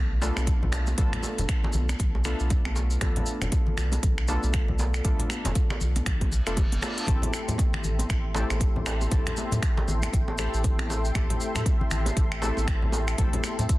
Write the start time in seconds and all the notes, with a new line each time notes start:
Already playing: B1 A3 B3 D4 F4 A4
0.22 A3 B3 D4 F4 A4, muted conga, djembe slap, maracas
0.36 B1, finger snap, djembe tone, maracas
0.47 kick, closed hi-hat, maracas
0.62 B1, high conga, low conga
0.72 finger snap, djembe slap, muted conga, maracas
0.87 djembe tone, maracas
0.98 B1 A3 B3 D4 F4 A4, kick, closed hi-hat, high conga, maracas
1.13 finger snap, closed hi-hat, muted conga, low conga
1.23 djembe tone, maracas
1.38 F1, closed hi-hat, muted conga, low conga, maracas
1.49 finger snap, kick, closed hi-hat, maracas
1.64 muted conga, djembe slap, high conga
1.73 B1, djembe tone, high conga, maracas
1.89 finger snap, closed hi-hat, muted conga, djembe bass, maracas
1.99 B1, kick, closed hi-hat, high conga, maracas
2.15 djembe tone
2.25 A3 B3 D4 F4 A4, finger snap, muted conga, maracas
2.39 B1, maracas
2.50 kick, closed hi-hat, muted conga, high conga, maracas
2.65 B1, finger snap, djembe tone, djembe bass
2.76 djembe slap, muted conga, maracas
2.90 maracas
3.01 B1 A3 B3 D4 F4 A4, finger snap, kick, closed hi-hat, djembe tone, high conga, maracas
3.16 closed hi-hat, muted conga, low conga
3.26 maracas
3.42 F1, finger snap, closed hi-hat, muted conga, low conga, maracas
3.52 kick, closed hi-hat, djembe tone, maracas
3.66 muted conga, high conga
3.77 B1, finger snap, high conga, maracas
3.92 closed hi-hat, muted conga, djembe tone, djembe bass, maracas
4.03 B1, kick, closed hi-hat, high conga, maracas
4.18 finger snap
4.28 A3 B3 D4 F4 A4, muted conga, djembe slap, maracas
4.43 B1, djembe tone, maracas
4.53 finger snap, kick, closed hi-hat, muted conga, maracas
4.68 B1, high conga, low conga
4.79 muted conga, djembe slap, djembe tone, maracas
4.94 finger snap, maracas
5.04 B1 A3 B3 D4 F4 A4, kick, closed hi-hat, high conga, maracas
5.19 closed hi-hat, muted conga, low conga
5.30 finger snap, djembe tone, maracas
5.45 F1, closed hi-hat, muted conga, djembe slap, low conga, maracas
5.55 kick, closed hi-hat, maracas
5.70 finger snap, muted conga, djembe slap, high conga, djembe tone
5.81 B1, high conga, maracas
5.96 closed hi-hat, muted conga, djembe bass, maracas
6.06 B1, finger snap, kick, closed hi-hat, reverse cymbal, high conga, maracas
6.21 kick, closed hi-hat, djembe tone
6.32 muted conga, maracas
6.47 F1 A3 B3 D4 F4 A4, finger snap, closed hi-hat, maracas
6.57 kick, closed hi-hat, muted conga, djembe tone, high conga, maracas
6.72 F1, closed hi-hat, djembe bass
6.81 A3 B3 D4 F4 A4, finger snap, muted conga, djembe slap, maracas
6.98 closed hi-hat, maracas
7.07 A1 A3 C4 E4 G4 A4 E5 G5 C6, kick, closed hi-hat, high conga, maracas
7.22 closed hi-hat, muted conga, djembe tone, low conga
7.33 finger snap, maracas
7.48 A2, closed hi-hat, muted conga, low conga, maracas
7.58 kick, closed hi-hat, djembe tone, maracas
7.73 finger snap, muted conga, high conga
7.84 A1, high conga, maracas
7.99 closed hi-hat, djembe bass, maracas
8.09 A1, finger snap, kick, closed hi-hat, high conga, djembe tone, maracas
8.35 A3 C4 E4 G4 A4, djembe slap, muted conga, maracas
8.50 A1, finger snap, djembe tone, maracas
8.60 kick, closed hi-hat, muted conga, maracas
8.76 A1, high conga, low conga
8.86 finger snap, muted conga, djembe slap, maracas
9.01 djembe tone, maracas
9.11 A1 A3 C4 E4 G4 A4, kick, closed hi-hat, high conga, maracas
9.26 finger snap, closed hi-hat, muted conga, low conga
9.37 djembe tone, maracas
9.51 A2, closed hi-hat, muted conga, low conga, maracas
9.62 finger snap, kick, closed hi-hat, maracas
9.77 djembe slap, muted conga, high conga
9.88 A1, djembe tone, high conga, maracas
10.02 finger snap, closed hi-hat, muted conga, djembe bass, maracas
10.13 A1, kick, closed hi-hat, high conga, maracas
10.28 djembe tone
10.38 A3 C4 E4 G4 A4, finger snap, muted conga, maracas
10.54 A1, maracas
10.63 kick, closed hi-hat, muted conga, high conga, maracas
10.79 A1, finger snap, djembe tone, djembe bass
10.89 muted conga, djembe slap, maracas
11.05 maracas
11.15 A1 A3 C4 E4 G4 A4, finger snap, kick, closed hi-hat, djembe tone, high conga, maracas
11.30 closed hi-hat, muted conga, low conga
11.40 maracas
11.55 A2, finger snap, closed hi-hat, muted conga, low conga, maracas
11.66 kick, closed hi-hat, djembe tone, maracas
11.81 muted conga, high conga
11.91 A1, finger snap, high conga, maracas
12.06 closed hi-hat, muted conga, djembe tone, djembe bass, maracas
12.17 A1, kick, closed hi-hat, high conga, maracas
12.32 finger snap
12.42 A3 C4 E4 G4 A4, djembe slap, muted conga, maracas
12.57 A1, djembe tone, maracas
12.68 finger snap, kick, closed hi-hat, muted conga, maracas
12.82 A1, high conga, low conga
12.92 muted conga, djembe slap, djembe tone, maracas
13.08 finger snap, maracas
13.18 A1 A3 C4 E4 G4 A4, kick, closed hi-hat, high conga, maracas
13.33 closed hi-hat, muted conga, low conga
13.43 finger snap, djembe tone, maracas
13.59 A2, closed hi-hat, muted conga, low conga, maracas
13.69 kick, closed hi-hat, maracas